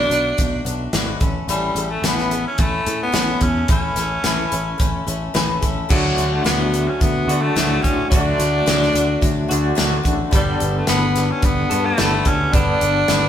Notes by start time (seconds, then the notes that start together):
Already playing: B2 F#3 A3 D4
0.10 B1 A3 D4 F#4, closed hi-hat
0.37 B1 F#3 A3 D4 F#4, kick, closed hi-hat
0.65 B1 A3 D4 F#4, closed hi-hat
0.93 G#1 B2 F#3 A3 D4 F#4, snare, closed hi-hat
1.20 A1 A3 C#4 E4 A4, kick, closed hi-hat
1.48 A1 A2 E3 G3 A3 C#4 E4 A4, closed hi-hat
1.75 A1 C#4 E4 A4, closed hi-hat
1.80 A3
1.90 A3
2.02 A1 A2 E3 A3 C#4, snare, closed hi-hat
2.07 B3 E4 A4
2.18 snare
2.31 C#4 E4 A4, closed hi-hat
2.35 A3
2.48 C#4
2.58 A1 A3 C#4 E4 A4, kick, closed hi-hat
2.86 A2 A3 C#4 E4 A4, closed hi-hat
3.03 B3
3.12 A1 A2 E3 A3 C#4 E4 A4, snare, closed hi-hat
3.41 E2 A3 C#4 E4 A4, kick, closed hi-hat
3.68 A1 A2 E3 A3 C#4 E4 A4, kick, closed hi-hat
3.72 C#4
3.96 A1 C#4 E4 A4, snare, closed hi-hat
4.00 A3
4.24 A1 A2 E3 A3 C#4 E4 A4, snare, closed hi-hat
4.51 A1 A3 C#4 E4 A4, closed hi-hat
4.78 A1 A3 C#4 E4 A4, kick, closed hi-hat
5.07 A1 A3 C#4 E4 A4, closed hi-hat
5.34 A1 A2 E3 A3 C#4 E4 A4, snare, closed hi-hat
5.62 A1 A3 C#4 E4 A4, kick, closed hi-hat
5.89 D2 D3 F#3 A3 D4 F#4, kick, crash
6.16 D2 A3 D4 F#4, closed hi-hat
6.34 A3
6.44 D2 D3 F#3 A3 B3 D4 F#4, snare, closed hi-hat
6.73 A3 D4 F#4, closed hi-hat
6.89 C#4
7.00 D2 F#3 A3 B3 D4 F#4, kick, closed hi-hat
7.27 D3 F#3 F#4, closed hi-hat
7.31 D3 A3 D4
7.42 A3
7.56 D2 D3 F#3 A3 D4 F#4, snare, closed hi-hat
7.82 A2 A3 C#4 D4 F#4, kick, closed hi-hat
8.10 D2 D3 F#3 A3 D4 F#4, kick, closed hi-hat
8.38 D2 A3 D4 F#4, snare, closed hi-hat
8.66 D2 D3 F#3 A3 D4 F#4, snare, closed hi-hat
8.82 snare
8.93 D2 A3 D4 F#4, closed hi-hat
9.21 D2 F#3 A3 D4 F#4, kick, closed hi-hat
9.48 D2 D3 F#3 A3 D4 F#4, closed hi-hat
9.75 D2 D3 F#3 A3 D4 F#4, snare, closed hi-hat
10.03 A1 A3 D4 F#4, kick, closed hi-hat
10.31 G1 G3 B3 D4 A4, kick, closed hi-hat
10.35 G3
10.60 G1 B3 D4 A4, closed hi-hat
10.78 A3
10.87 G1 G3 B3 D4 A4, snare, closed hi-hat
11.16 B3 D4 A4, snare, closed hi-hat
11.31 C#4
11.42 G1 G3 B3 D4 A4, kick, closed hi-hat
11.70 G2 G3 B3 D4 A4, closed hi-hat
11.85 A3
11.97 G1 G3 B3 D4 A4, snare, closed hi-hat
12.25 D2 B3 C#4 D4 A4, kick, closed hi-hat
12.53 G1 G3 B3 D4 A4, kick, closed hi-hat
12.81 G1 B3 D4 A4, closed hi-hat
13.08 G1 G3 B3 D4 A4, snare, closed hi-hat